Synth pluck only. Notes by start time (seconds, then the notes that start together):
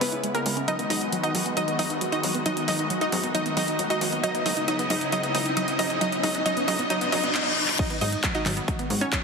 0.01 B3 B4
0.35 A#3 A#4
0.68 D#4 D#5
0.90 D#4 D#5
1.23 D#4 D#5
1.57 D#4 D#5
1.79 D#4 D#5
2.12 D#4 D#5
2.46 D#4 D#5
2.68 D#4 D#5
3.01 D#4 D#5
3.35 D#4 D#5
3.57 D#4 D#5
3.90 D#4 D#5
4.24 D#4 D#5
4.46 D#4 D#5
4.68 D#4 D#5
4.90 D#4 D#5
5.12 D#4 D#5
5.35 D#4 D#5
5.57 D#4 D#5
5.79 D#4 D#5
6.01 D#4 D#5
6.23 D#4 D#5
6.46 D#4 D#5
6.68 D#4 D#5
6.90 D#4 D#5
7.12 D#4 D#5
7.79 D#4 D#5
8.01 D#4 D#5
8.35 D#4 D#5
9.01 C#4 C#5